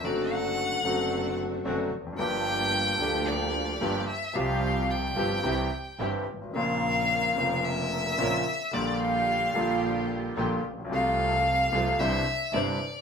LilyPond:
<<
  \new Staff \with { instrumentName = "Violin" } { \time 4/4 \key g \dorian \tempo 4 = 110 d''8 fis''2 r4. | g''2 d''4. e''8 | f''4 g''2 r4 | f''2 e''2 |
d''8 f''2 r4. | f''2 e''4 d''4 | }
  \new Staff \with { instrumentName = "String section" } { \time 4/4 \key g \dorian <c' d' fis'>4. <c' d' fis'>4. <c' d' fis'>8 r8 | <bes f' g'>4. <bes f' g'>4. <bes f' g'>8 r8 | <c' f' g'>4. <c' f' g'>8 <c' e' g'>8 r8 <c' e' g'>8 r8 | <c' bes'>4. <c' bes'>4. <c' des' bes'>8 r8 |
<bes f' g'>4. <bes f' g'>4. <bes f' g'>8 r8 | <c' f' a'>4. <c' f' a'>8 <d' e' c''>8 r8 <d' e' c''>8 r8 | }
  \new Staff \with { instrumentName = "Grand piano" } { \clef bass \time 4/4 \key g \dorian <fis, d fis a c' fis'>4. <fis, d fis a c' fis'>4. <fis, d fis a c' fis'>8 r32 e,32 f,32 fis,32 | <g,, g, f bes d' g'>4. <d, d f bes d' g'>4. <g,, g, f bes d' g'>8 r8 | <c, c f g c' g'>4. <g,, g, f g c' g'>8 <c, c e g c' g'>8 r8 <g,, g, e g c' g'>8 r32 g,,32 aes,,32 a,,32 | <bes,, bes, des bes c' f'>4. <f,, f, des bes c' f'>4. <bes,, bes, des bes c' f'>8 r8 |
<bes,, bes, d g bes f'>4. <bes,, bes, d g bes f'>4. <bes,, bes, d g bes f'>8 r32 a,,32 bes,,32 b,,32 | <c, c f a f'>4. <c, c f a f'>8 <c, c e g d'>8 r8 <g,, g, c e g d'>8 r8 | }
  \new Staff \with { instrumentName = "Double bass" } { \clef bass \time 4/4 \key g \dorian fis,,4. fis,,4. fis,,8 f,,8 | g,,4. d,4. g,,8 r8 | c,4. g,,8 c,8 r8 g,,8 aes,,8 | bes,,4. f,,4. bes,,8 r8 |
bes,,4. bes,,4. bes,,8 bes,,8 | c,4. c,8 c,8 r8 g,,8 r8 | }
>>